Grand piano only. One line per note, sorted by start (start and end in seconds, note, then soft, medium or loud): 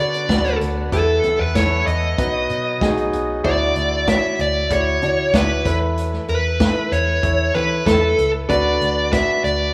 0.00 0.94 D3 medium
0.00 0.29 D4 medium
0.00 0.29 F#4 medium
0.00 0.30 B4 medium
0.29 0.78 D4 medium
0.29 0.79 F#4 medium
0.29 0.79 B4 medium
0.92 1.83 E3 medium
0.92 1.41 E4 medium
0.92 1.42 A4 medium
0.92 1.42 B4 medium
1.55 2.04 E4 medium
1.55 2.05 A4 medium
1.55 2.05 B4 medium
2.18 3.09 B2 medium
2.18 2.67 D#4 medium
2.18 2.68 F#4 medium
2.18 2.68 B4 medium
2.81 3.30 D#4 medium
2.81 3.31 F#4 medium
2.81 3.31 G#4 loud
3.44 4.35 D3 medium
3.44 3.93 E4 medium
3.44 3.94 F#4 medium
3.44 3.94 D5 medium
4.07 4.57 E4 medium
4.07 4.57 F#4 medium
4.07 4.57 C#5 medium
4.70 4.95 E4 medium
4.70 4.95 F#4 medium
4.70 4.96 D5 medium
5.02 5.27 E4 medium
5.02 5.27 F#4 medium
5.02 5.27 D5 medium
5.34 5.64 E4 medium
5.34 5.66 F#4 medium
5.34 5.66 D5 medium
5.65 6.56 E3 medium
5.65 6.41 E4 medium
5.65 6.41 A4 medium
5.65 6.42 B4 medium
6.60 7.09 E4 medium
6.60 7.10 A4 medium
6.60 7.10 B4 medium
7.23 7.48 E4 medium
7.23 7.48 A4 medium
7.23 7.48 C#5 medium
7.54 7.79 E4 medium
7.54 7.79 A4 medium
7.54 7.80 B4 medium
7.86 8.35 E4 medium
7.86 8.36 A4 medium
7.86 8.36 B4 medium
8.49 9.40 D3 medium
8.49 8.98 D4 medium
8.49 8.99 F#4 medium
8.49 8.99 B4 loud
9.12 9.62 D4 medium
9.12 9.62 F#4 medium
9.12 9.62 B4 medium